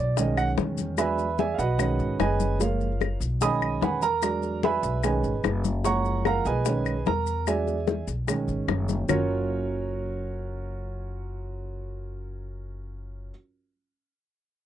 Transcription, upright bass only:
Already playing: B1
0.57 E2
1.58 B1
1.99 G#1
2.20 F#1
3.20 B1
3.81 E2
4.83 B1
5.24 G#1
5.44 F#1
6.45 B1
7.06 E2
8.07 B1
8.48 G#1
8.68 F#1
9.09 F#1

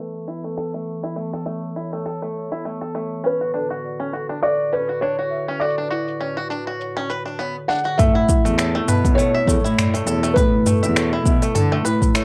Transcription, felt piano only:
3.26 B4
4.42 D5
4.73 B4
5.01 C#5
5.60 D5
7.68 F#5
7.98 E5
9.15 C#5
10.34 B4

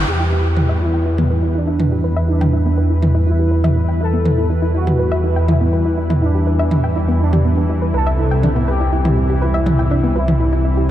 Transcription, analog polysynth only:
0.07 G4
0.81 E4
1.55 D4
2.29 D4
3.27 E4
4.01 A4
4.75 F#4
5.48 E4
6.22 D4
7.20 D4
7.94 A4
8.68 G4
9.42 E4
10.15 E4

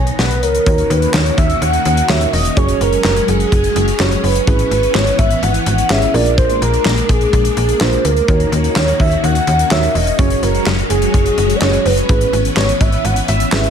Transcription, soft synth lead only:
Already playing: C#5
0.19 B4
0.42 A#4
0.90 B4
1.14 C#5
1.38 E5
1.62 F#5
2.09 E5
2.33 D#5
2.57 C#5
2.81 A#4
3.28 G#4
4.00 C#5
4.23 B4
4.95 C#5
5.19 E5
5.42 F#5
5.90 E5
6.14 D5
6.38 C5
6.61 A#4
7.09 G#4
7.81 C5
8.04 A#4
8.76 C#5
9.00 E5
9.23 F#5
9.71 E5
9.95 D#5
10.19 C#5
10.43 A#4
10.90 G#4
11.56 D#5
11.62 C#5
11.85 B4
12.57 C#5
12.80 E5
13.04 F#5
13.28 E5

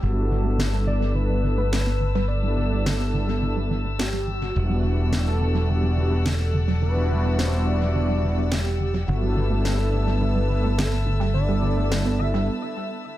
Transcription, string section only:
Already playing: E6
0.03 B4 A5
4.56 D5 F#5
9.07 B4 E5 A5 E6

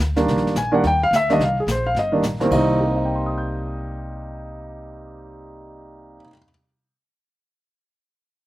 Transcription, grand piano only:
0.16 D#3 G3 A#3 D4
0.58 G#5
0.72 D#3 G3 A#3 D4 F#5
0.87 G5
1.03 F5
1.16 E5
1.30 D#3 G3 A#3 D4 D#5
1.44 F5
1.60 G#4
1.71 C5
1.87 F5
1.99 D#5
2.12 D#3 G3 A#3 D4
2.40 C2 D#3 G3 A#3 C4
2.46 C3 G3
2.53 A#3 D#5
2.58 D#4
2.80 G4
2.88 C5
2.96 D#5
3.05 G5
3.15 C6
3.26 D#6
3.38 G6

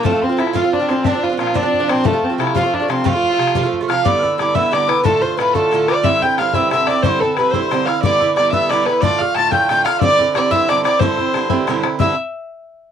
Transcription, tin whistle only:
0.04 A5
0.22 C6
0.39 E5
0.54 F5
0.73 D5
0.89 C6
1.04 E5
1.08 D5
1.22 F5
1.38 F5
1.56 D5
1.89 C6
2.06 A5
2.56 F5
2.75 D5
2.90 C6
3.06 F5 G5
3.88 F6
4.04 D6
4.19 F6
4.23 E6
4.40 D6
4.55 E6
4.72 D6
5.05 A5
5.22 C6
5.39 B5
5.54 A5
5.88 D6
6.04 E6
6.22 G6
6.38 F6
6.55 E6
6.72 E6
6.89 D6
7.04 C6
7.22 A5
7.38 B5
7.54 C6
7.89 F6
8.03 D6
8.38 D6
8.53 E6
8.71 D6
8.87 B5
9.03 D6
9.21 F6
9.37 A6
9.52 G6
9.70 G6
9.85 F6
10.01 E6
10.05 D6
10.50 E6
10.69 D6
10.85 D6
11.02 C6 D6
11.99 E6

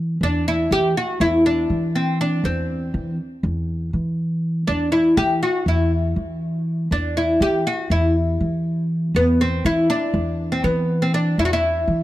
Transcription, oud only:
0.23 D4
0.48 E4
0.72 G4
0.97 F#4
1.21 E4
1.46 D4
1.95 C4
2.21 D4
2.45 C4
4.67 D4
4.92 E4
5.17 G4
5.43 F#4
5.68 E4
6.92 D4
7.17 E4
7.42 G4
7.67 F#4
7.91 E4
9.16 B3
9.41 C4
9.66 E4
9.90 D4
10.52 C4
10.64 B3
11.02 C4
11.14 D4
11.39 E4
11.45 F#4
11.53 E4

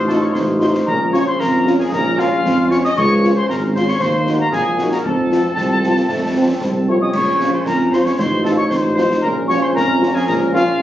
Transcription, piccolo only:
0.07 A5
0.20 C#6
0.32 C6
0.60 C6
0.86 A#5
1.13 C#6
1.27 C6
1.40 A#5
1.79 G#5
1.93 A#5
2.19 F5
2.71 C#6
2.84 D#6
2.97 C#6
3.37 C6
3.50 A#5
3.76 C6
3.89 C#6
4.01 C6
4.41 A#5
4.53 G#5
4.93 A#5
5.06 A5
6.89 C#6
7.02 D#6
7.15 C#6
7.54 C6
7.67 A#5
7.94 C6
8.06 C#6
8.19 C6
8.46 A5
8.57 C#6
8.70 C6
8.96 C6
9.21 A#5
9.48 C#6
9.61 C6
9.75 A#5
10.15 G#5
10.28 A#5
10.55 F5

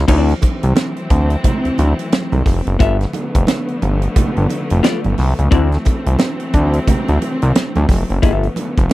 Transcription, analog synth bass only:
0.08 D2
0.64 C2
1.11 D2
1.65 D2
1.79 D2
2.32 C2
2.46 F1
2.67 F#1
2.80 G1
3.35 F1
3.82 G1
4.16 G1
4.37 G1
4.71 F1
5.05 G1
5.18 C2
5.39 C#2
5.52 D2
6.07 C2
6.54 D2
6.88 D2
7.09 D2
7.43 C2
7.76 D2
7.89 F1
8.10 F#1
8.23 G1
8.78 F1

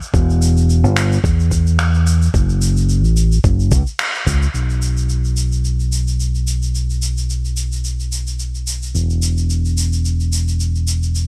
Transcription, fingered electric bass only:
0.14 E1
0.84 G1
1.24 E2
2.34 F#1
3.04 A1
3.44 F#1
3.72 C#2
4.27 C#2
4.54 B1
8.95 E1

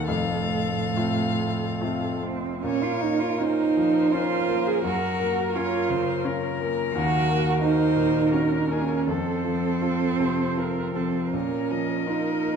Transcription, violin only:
0.09 F5
2.65 C#5
3.42 C5
4.87 A#4
5.56 C#5
5.90 C5
6.26 A#4
7.63 C5
8.33 A#4
8.71 G#4
9.09 A4
11.35 A#4
11.71 D#5

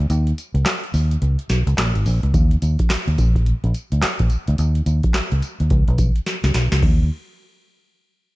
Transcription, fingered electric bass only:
0.10 D#2
0.54 C#2
0.94 D#2
1.22 C#2
1.50 B1
1.67 C#2
1.78 A#1
1.95 G#1
2.06 A#1
2.23 C#2
2.34 D#2
2.62 D#2
2.90 muted fingered electric bass stroke
3.08 D#2
3.18 A#1
3.64 A#1
3.92 D2
4.03 muted fingered electric bass stroke
4.20 A#1
4.48 D2
4.59 D#2
4.86 D#2
5.32 C#2
5.60 D#2
5.71 C#2
5.88 B1
6.44 C#2
6.55 B1
6.72 C#2
6.83 D#2

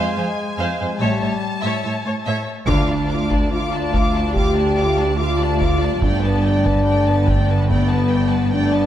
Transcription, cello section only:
0.17 F2
0.59 F2
0.80 F2
1.00 A2
1.21 A2
1.64 A2
1.84 A2
2.05 A2
2.26 A2
2.68 D2
6.02 G2

